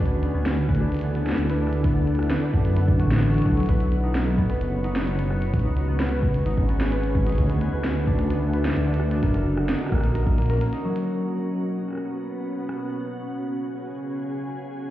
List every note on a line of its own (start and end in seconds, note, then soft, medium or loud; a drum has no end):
0.00 0.30 D2 medium
0.00 3.69 D3 medium
0.00 0.22 B3 medium
0.00 0.80 D4 medium
0.00 1.47 F#4 medium
0.00 0.69 B4 medium
0.00 1.47 G#5 medium
0.06 3.69 A4 medium
0.06 closed hi-hat medium
0.17 3.69 D4 medium
0.17 3.69 E4 medium
0.23 0.34 B3 medium
0.23 closed hi-hat soft
0.34 1.34 D2 loud
0.34 1.03 B3 medium
0.46 snare loud
0.46 closed hi-hat medium
0.69 1.49 B4 medium
0.69 kick loud
0.75 closed hi-hat medium
0.79 1.61 D4 medium
0.79 6.28 F#5 medium
0.79 cross-stick soft
0.92 closed hi-hat soft
0.94 closed hi-hat soft
0.97 closed hi-hat soft
0.99 closed hi-hat soft
1.01 1.15 B3 medium
1.01 closed hi-hat medium
1.15 1.84 B3 medium
1.15 closed hi-hat soft
1.27 snare medium
1.29 snare medium
1.32 snare medium
1.35 2.38 D2 medium
1.35 snare loud
1.35 closed hi-hat medium
1.50 2.30 B4 medium
1.50 closed hi-hat medium
1.61 2.42 D4 medium
1.67 cross-stick medium
1.73 closed hi-hat medium
1.84 1.96 B3 medium
1.84 kick loud
1.84 closed hi-hat medium
1.96 2.65 B3 medium
2.07 closed hi-hat soft
2.15 cross-stick medium
2.15 closed hi-hat soft
2.23 closed hi-hat soft
2.30 3.69 B4 medium
2.30 snare loud
2.30 closed hi-hat medium
2.42 4.10 D4 medium
2.54 3.01 F#2 loud
2.54 kick loud
2.65 2.76 B3 medium
2.65 closed hi-hat soft
2.77 3.22 B3 medium
2.77 closed hi-hat medium
2.88 kick loud
3.00 3.42 A1 medium
3.00 3.11 F#4 medium
3.00 closed hi-hat soft
3.11 3.34 F#4 medium
3.11 snare loud
3.11 closed hi-hat soft
3.14 snare medium
3.17 snare medium
3.20 4.26 B3 medium
3.20 snare medium
3.20 closed hi-hat medium
3.34 5.78 F#4 medium
3.34 closed hi-hat soft
3.38 closed hi-hat soft
3.42 3.64 D2 loud
3.42 3.56 F#3 medium
3.42 kick loud
3.42 closed hi-hat soft
3.57 3.74 F#3 medium
3.57 closed hi-hat soft
3.60 closed hi-hat soft
3.63 closed hi-hat soft
3.66 closed hi-hat soft
3.69 4.45 B1 loud
3.69 5.54 B2 medium
3.69 6.28 B3 medium
3.69 4.49 B4 medium
3.69 kick loud
3.69 closed hi-hat medium
3.80 closed hi-hat medium
3.85 14.90 F#4 medium
3.85 6.27 C#5 medium
3.92 closed hi-hat soft
4.04 4.84 D#4 medium
4.15 snare loud
4.15 closed hi-hat medium
4.27 4.38 B3 medium
4.38 5.07 B3 medium
4.38 kick loud
4.50 5.30 B4 medium
4.50 cross-stick soft
4.50 closed hi-hat medium
4.61 5.55 F#1 medium
4.61 closed hi-hat medium
4.84 5.65 D#4 medium
4.84 closed hi-hat soft
4.96 snare loud
4.96 closed hi-hat medium
5.07 5.19 B3 medium
5.07 closed hi-hat medium
5.19 5.88 B3 medium
5.19 closed hi-hat medium
5.30 6.11 B4 medium
5.30 cross-stick medium
5.42 closed hi-hat soft
5.54 6.42 C#2 medium
5.54 7.38 C#3 medium
5.54 kick loud
5.54 closed hi-hat medium
5.59 closed hi-hat soft
5.65 7.38 C#4 medium
5.65 6.45 D#4 medium
5.65 8.12 G#5 medium
5.77 closed hi-hat soft
5.84 7.38 G#4 medium
5.88 5.99 B3 medium
6.00 6.69 B3 medium
6.00 snare loud
6.00 closed hi-hat soft
6.02 closed hi-hat soft
6.04 closed hi-hat soft
6.07 closed hi-hat soft
6.09 6.92 B4 medium
6.09 closed hi-hat medium
6.23 kick loud
6.34 closed hi-hat soft
6.46 7.40 G#1 loud
6.46 7.26 D#4 medium
6.46 closed hi-hat medium
6.57 kick loud
6.69 6.80 B3 medium
6.69 closed hi-hat soft
6.81 7.49 B3 medium
6.81 snare loud
6.81 closed hi-hat soft
6.92 7.72 B4 medium
6.92 closed hi-hat medium
7.04 closed hi-hat medium
7.15 kick loud
7.27 8.13 D#4 medium
7.27 closed hi-hat soft
7.30 closed hi-hat soft
7.32 closed hi-hat soft
7.35 closed hi-hat soft
7.38 7.68 D2 medium
7.38 9.23 D3 medium
7.38 kick loud
7.38 closed hi-hat medium
7.42 9.23 D4 medium
7.48 7.61 B3 medium
7.48 9.23 A4 medium
7.48 closed hi-hat medium
7.61 8.30 B3 medium
7.61 closed hi-hat soft
7.73 8.72 D2 loud
7.73 8.53 B4 medium
7.79 9.23 E5 medium
7.84 snare loud
7.84 closed hi-hat medium
8.07 8.88 D4 medium
8.07 kick loud
8.19 cross-stick soft
8.19 closed hi-hat medium
8.30 8.42 B3 medium
8.30 closed hi-hat medium
8.42 9.11 B3 medium
8.54 9.29 B4 medium
8.54 closed hi-hat soft
8.65 snare loud
8.65 closed hi-hat soft
8.68 snare medium
8.71 snare medium
8.74 9.24 D2 medium
8.74 snare medium
8.74 closed hi-hat medium
8.88 9.75 D4 medium
8.94 closed hi-hat medium
9.00 cross-stick medium
9.11 9.29 B3 medium
9.11 closed hi-hat soft
9.23 9.76 F#1 medium
9.23 9.92 A#3 medium
9.23 14.77 C#4 medium
9.23 kick loud
9.23 closed hi-hat medium
9.34 10.15 A#4 medium
9.34 closed hi-hat medium
9.57 11.81 A#4 medium
9.57 cross-stick medium
9.69 10.72 D#4 medium
9.69 snare loud
9.69 closed hi-hat medium
9.80 cross-stick soft
9.83 cross-stick soft
9.86 cross-stick soft
9.89 10.61 A#1 loud
9.89 10.03 A#3 medium
9.89 kick loud
9.89 cross-stick soft
9.92 cross-stick medium
9.95 cross-stick soft
9.98 cross-stick medium
10.01 10.38 A#3 medium
10.01 cross-stick medium
10.01 closed hi-hat medium
10.15 10.49 A#4 medium
10.15 closed hi-hat medium
10.27 kick loud
10.38 10.61 A#3 medium
10.38 closed hi-hat soft
10.42 closed hi-hat soft
10.46 12.62 A#4 loud
10.46 closed hi-hat soft
10.50 closed hi-hat medium
10.54 closed hi-hat soft
10.57 closed hi-hat soft
10.61 13.83 A#3 medium
10.61 closed hi-hat medium
10.73 13.43 D#4 medium
10.73 closed hi-hat medium
10.84 11.12 F#3 medium
10.96 closed hi-hat medium
11.07 12.92 B2 medium
11.25 13.66 B3 medium
11.66 13.66 F#5 medium
11.88 cross-stick soft
11.91 cross-stick soft
11.93 cross-stick soft
11.95 cross-stick soft
11.97 cross-stick soft
12.69 cross-stick medium
12.92 14.77 C#3 medium
13.16 14.77 G#4 medium
13.42 14.90 G#5 medium
14.77 14.90 D3 medium
14.85 14.90 F#5 medium